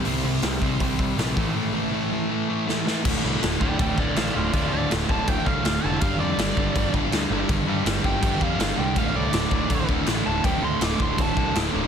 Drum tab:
CC |--------|--------|x-x-x-x-|x-x-x-x-|
HH |o-o-o-o-|--------|--------|--------|
SD |--o---o-|------oo|--o---o-|--o---o-|
BD |---ooo-o|--------|o--ooo--|o--ooo--|

CC |x-x-x-x-|x-x-x-x-|x-x-x-x-|x-x-x-x-|
HH |--------|--------|--------|--------|
SD |--o---o-|--o---o-|--o---o-|--o---o-|
BD |o--ooo--|o--ooo--|o--ooo--|o--ooo--|